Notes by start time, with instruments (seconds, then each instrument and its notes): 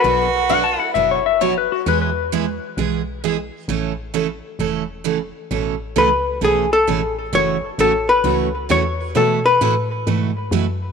Already playing: fiddle F#4, hollow-body jazz guitar F#4 B4
0.04 fm bass B1, steel-string acoustic guitar B2 F#3 B3 D4 F#4
0.49 steel-string acoustic guitar B2 F#3 B3 D4 F#4, electric slide guitar F#5
0.64 electric slide guitar A5
0.78 fiddle E4, hollow-body jazz guitar A4, electric slide guitar F#5
0.94 fm bass F#1, steel-string acoustic guitar B2 F#3 B3 D4 F#4, electric slide guitar E5
1.11 electric slide guitar C#5
1.26 electric slide guitar E5
1.41 steel-string acoustic guitar B2 F#3 B3 D4 F#4, electric slide guitar C#5
1.58 electric slide guitar B4
1.72 electric slide guitar F#4
1.86 fm bass E2, steel-string acoustic guitar E3 G#3 B3 E4 G#4, electric slide guitar B4
2.01 electric slide guitar B4
2.32 steel-string acoustic guitar E3 G#3 B3 E4 G#4
2.77 fm bass B1, steel-string acoustic guitar E3 G#3 B3 E4 G#4
3.24 steel-string acoustic guitar E3 G#3 B3 E4 G#4
3.68 fm bass A1, steel-string acoustic guitar C#3 E3 A3 C#4 A4
4.14 steel-string acoustic guitar C#3 E3 A3 C#4 A4
4.59 fm bass E1, steel-string acoustic guitar C#3 E3 A3 C#4 A4
5.04 steel-string acoustic guitar C#3 E3 A3 C#4 A4
5.51 fm bass A1, steel-string acoustic guitar B2 E3 A3 C#4 A4
5.96 fm bass C#2, steel-string acoustic guitar B2 E3 A3 C#4 A4, hollow-body jazz guitar B4
6.41 fm bass B1, steel-string acoustic guitar B2 E3 A3 C#4 A4, hollow-body jazz guitar G#4
6.73 hollow-body jazz guitar A4
6.87 fm bass A1, steel-string acoustic guitar B2 E3 A3 C#4 A4
7.33 fm bass F#1, steel-string acoustic guitar C#3 E3 A3 C#4 F#4, hollow-body jazz guitar C#5
7.62 fm bass F#1
7.78 fm bass A1, steel-string acoustic guitar C#3 E3 A3 C#4 F#4, hollow-body jazz guitar A4
8.09 hollow-body jazz guitar B4
8.24 fm bass C#2, steel-string acoustic guitar C#3 E3 A3 C#4 F#4
8.69 fm bass E2, steel-string acoustic guitar C#3 E3 A3 C#4 F#4, hollow-body jazz guitar C#5
9.15 steel-string acoustic guitar B2 E3 A3 E4 F#4 B4, fm bass B2, hollow-body jazz guitar A4
9.46 hollow-body jazz guitar B4
9.61 fm bass A2, steel-string acoustic guitar B2 E3 A3 E4 F#4 B4
10.07 fm bass G#2, steel-string acoustic guitar B2 E3 A3 E4 F#4 B4
10.51 fm bass F#2, steel-string acoustic guitar B2 E3 A3 E4 F#4 B4